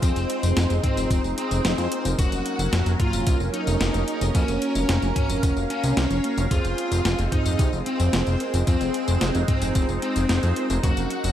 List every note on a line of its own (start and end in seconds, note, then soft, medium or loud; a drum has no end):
0.00 0.12 F2 loud
0.00 2.15 G#3 medium
0.00 2.15 C4 medium
0.00 1.61 C4 medium
0.00 0.73 C4 medium
0.00 2.17 D#4 medium
0.00 1.61 F4 medium
0.00 1.61 G#4 medium
0.00 0.73 C5 loud
0.00 1.61 C5 loud
0.00 kick loud
0.00 closed hi-hat medium
0.00 tambourine medium
0.16 0.26 F1 medium
0.16 closed hi-hat soft
0.16 tambourine soft
0.30 closed hi-hat medium
0.43 0.53 F1 medium
0.43 closed hi-hat medium
0.43 tambourine medium
0.57 0.66 F1 loud
0.57 snare loud
0.57 closed hi-hat medium
0.57 tambourine medium
0.70 0.80 F1 medium
0.70 closed hi-hat soft
0.70 tambourine soft
0.83 1.20 C4 medium
0.83 1.20 C5 medium
0.83 kick loud
0.83 closed hi-hat medium
0.83 mid tom medium
0.97 1.07 F1 medium
0.97 closed hi-hat medium
0.97 tambourine medium
1.11 1.20 F1 loud
1.11 kick loud
1.11 closed hi-hat medium
1.11 tambourine medium
1.24 1.34 F1 medium
1.24 tambourine soft
1.38 2.08 C4 loud
1.38 2.08 C5 loud
1.38 closed hi-hat medium
1.51 1.61 F1 medium
1.51 closed hi-hat medium
1.51 tambourine medium
1.65 1.74 F1 loud
1.65 1.88 C4 medium
1.65 1.88 F4 medium
1.65 1.88 G#4 medium
1.65 1.88 C5 medium
1.65 snare loud
1.65 closed hi-hat medium
1.65 tambourine medium
1.78 1.88 F2 medium
1.78 closed hi-hat soft
1.78 tambourine soft
1.92 2.15 C4 medium
1.92 2.15 F4 medium
1.92 2.15 G#4 medium
1.92 2.15 A#4 medium
1.92 closed hi-hat medium
2.05 2.15 F1 medium
2.05 closed hi-hat medium
2.05 tambourine medium
2.19 2.28 F1 loud
2.19 3.78 F#3 medium
2.19 4.33 F#3 medium
2.19 3.78 A#3 medium
2.19 3.78 C#4 medium
2.19 6.47 C#4 medium
2.19 2.89 F#4 loud
2.19 3.78 A#4 loud
2.19 6.47 A#4 medium
2.19 2.89 F#5 loud
2.19 kick loud
2.19 closed hi-hat medium
2.19 tambourine soft
2.32 2.42 F1 medium
2.32 closed hi-hat soft
2.32 tambourine soft
2.46 closed hi-hat medium
2.59 2.69 F1 medium
2.59 closed hi-hat medium
2.59 tambourine medium
2.73 2.82 F1 loud
2.73 snare loud
2.73 closed hi-hat medium
2.73 tambourine soft
2.86 2.96 F1 medium
2.86 closed hi-hat soft
2.86 tambourine soft
3.00 3.37 F4 medium
3.00 3.36 F5 loud
3.00 kick loud
3.00 closed hi-hat medium
3.00 mid tom medium
3.13 3.23 F1 medium
3.13 closed hi-hat medium
3.13 tambourine medium
3.27 3.36 C2 loud
3.27 kick loud
3.27 closed hi-hat medium
3.27 tambourine soft
3.40 3.50 F1 medium
3.40 tambourine soft
3.54 4.24 D#4 medium
3.54 4.24 D#5 loud
3.54 closed hi-hat medium
3.67 3.77 F1 medium
3.67 closed hi-hat medium
3.67 tambourine medium
3.81 3.90 F1 loud
3.81 4.05 A#3 medium
3.81 4.05 C#4 medium
3.81 4.05 F#4 medium
3.81 4.05 A#4 medium
3.81 snare loud
3.81 closed hi-hat medium
3.81 tambourine medium
3.94 4.04 F1 medium
3.94 closed hi-hat soft
3.94 tambourine soft
4.08 4.32 A#3 medium
4.08 4.32 C#4 medium
4.08 4.32 F#4 medium
4.08 4.32 G#4 medium
4.08 closed hi-hat medium
4.21 4.31 F1 medium
4.21 closed hi-hat medium
4.21 tambourine medium
4.35 4.45 F2 loud
4.35 5.94 A#3 medium
4.35 5.05 C#4 loud
4.35 5.94 C#4 medium
4.35 5.94 F#4 medium
4.35 5.94 A#4 loud
4.35 5.05 C#5 loud
4.35 8.63 F5 medium
4.35 kick loud
4.35 closed hi-hat medium
4.35 tambourine soft
4.48 4.58 F1 medium
4.48 closed hi-hat soft
4.48 tambourine soft
4.62 closed hi-hat medium
4.75 4.85 F1 medium
4.75 closed hi-hat medium
4.75 tambourine medium
4.89 4.99 F1 loud
4.89 snare loud
4.89 closed hi-hat medium
4.89 tambourine soft
5.02 5.12 F1 medium
5.02 closed hi-hat soft
5.02 tambourine soft
5.16 5.53 C#4 medium
5.16 5.53 C#5 medium
5.16 kick loud
5.16 closed hi-hat medium
5.16 mid tom medium
5.29 5.39 F1 medium
5.29 closed hi-hat medium
5.29 tambourine medium
5.43 5.53 F1 loud
5.43 kick loud
5.43 closed hi-hat medium
5.43 tambourine soft
5.56 5.66 F1 medium
5.56 tambourine soft
5.70 6.40 C#4 medium
5.70 6.40 C#5 loud
5.70 closed hi-hat medium
5.84 5.93 C2 medium
5.84 closed hi-hat medium
5.84 tambourine medium
5.97 6.07 C2 loud
5.97 snare loud
5.97 closed hi-hat medium
5.97 tambourine soft
6.10 6.20 F1 medium
6.10 closed hi-hat soft
6.10 tambourine soft
6.24 6.48 A#3 medium
6.24 6.48 C#4 medium
6.24 6.48 F#4 medium
6.24 6.48 A#4 loud
6.24 closed hi-hat medium
6.37 6.47 F1 medium
6.37 closed hi-hat medium
6.37 tambourine medium
6.51 6.61 F1 loud
6.51 10.80 G#3 medium
6.51 8.10 C4 medium
6.51 10.80 C4 medium
6.51 8.10 F4 medium
6.51 7.22 F4 loud
6.51 8.10 G#4 medium
6.51 8.10 C5 loud
6.51 7.21 F5 loud
6.51 kick loud
6.51 closed hi-hat medium
6.51 tambourine soft
6.65 6.74 F1 medium
6.65 closed hi-hat soft
6.65 tambourine soft
6.78 closed hi-hat medium
6.92 7.01 F1 medium
6.92 closed hi-hat medium
6.92 tambourine medium
7.05 7.15 F1 loud
7.05 snare loud
7.05 closed hi-hat medium
7.05 tambourine soft
7.19 7.28 F1 medium
7.19 closed hi-hat soft
7.19 tambourine soft
7.32 7.69 D#4 medium
7.32 7.69 D#5 medium
7.32 kick loud
7.32 closed hi-hat medium
7.32 mid tom medium
7.46 7.55 F1 medium
7.46 closed hi-hat medium
7.46 tambourine medium
7.59 7.69 C2 loud
7.59 kick loud
7.59 closed hi-hat medium
7.59 tambourine soft
7.73 7.82 F1 medium
7.73 tambourine soft
7.86 8.57 C4 loud
7.86 8.57 C5 loud
7.86 closed hi-hat medium
8.00 8.09 F1 medium
8.00 closed hi-hat soft
8.00 tambourine medium
8.13 8.23 F1 loud
8.13 8.37 C4 medium
8.13 8.37 F4 medium
8.13 8.37 G#4 medium
8.13 8.37 C5 medium
8.13 snare loud
8.13 closed hi-hat medium
8.13 tambourine soft
8.27 8.37 F1 medium
8.27 closed hi-hat soft
8.27 tambourine soft
8.40 8.64 C4 medium
8.40 8.64 F4 medium
8.40 8.64 G#4 medium
8.40 8.64 A#4 medium
8.40 closed hi-hat medium
8.54 8.64 F1 medium
8.54 closed hi-hat medium
8.54 tambourine medium
8.67 8.77 F2 loud
8.67 10.26 C4 medium
8.67 9.38 C4 medium
8.67 10.81 D#4 medium
8.67 10.26 F4 medium
8.67 10.26 G#4 medium
8.67 10.26 C5 loud
8.67 9.38 C5 loud
8.67 kick loud
8.67 closed hi-hat medium
8.67 tambourine medium
8.81 8.91 F1 medium
8.81 closed hi-hat soft
8.81 tambourine soft
8.94 closed hi-hat medium
9.08 9.18 F1 medium
9.08 closed hi-hat soft
9.08 tambourine medium
9.21 9.31 F1 loud
9.21 snare loud
9.21 closed hi-hat medium
9.21 tambourine medium
9.35 9.45 F1 medium
9.35 closed hi-hat soft
9.35 tambourine soft
9.48 9.85 C4 medium
9.48 9.85 C5 medium
9.48 kick loud
9.48 closed hi-hat medium
9.48 mid tom medium
9.62 9.72 F1 medium
9.62 closed hi-hat medium
9.62 tambourine medium
9.75 9.85 F1 loud
9.75 kick loud
9.75 closed hi-hat medium
9.75 tambourine medium
9.89 9.99 F1 medium
9.89 tambourine soft
10.02 10.73 C4 loud
10.02 10.73 C5 loud
10.02 closed hi-hat medium
10.16 10.26 F1 medium
10.16 closed hi-hat medium
10.16 tambourine medium
10.29 10.39 F1 loud
10.29 10.53 C4 medium
10.29 10.53 F4 medium
10.29 10.53 G#4 medium
10.29 10.53 C5 medium
10.29 snare loud
10.29 closed hi-hat medium
10.29 tambourine soft
10.43 10.53 F2 medium
10.43 closed hi-hat soft
10.43 tambourine soft
10.56 10.80 C4 medium
10.56 10.80 F4 medium
10.56 10.80 G#4 medium
10.56 10.80 A#4 medium
10.56 closed hi-hat medium
10.70 10.80 F1 medium
10.70 closed hi-hat medium
10.70 tambourine medium
10.83 10.93 F1 loud
10.83 11.32 F#3 medium
10.83 11.32 A#3 medium
10.83 11.32 C#4 medium
10.83 11.32 F#4 loud
10.83 11.32 A#4 loud
10.83 11.32 F#5 loud
10.83 kick loud
10.83 closed hi-hat medium
10.83 tambourine medium
10.97 11.07 F1 medium
10.97 closed hi-hat soft
10.97 tambourine soft
11.11 closed hi-hat medium
11.24 11.32 F1 medium
11.24 closed hi-hat medium
11.24 tambourine medium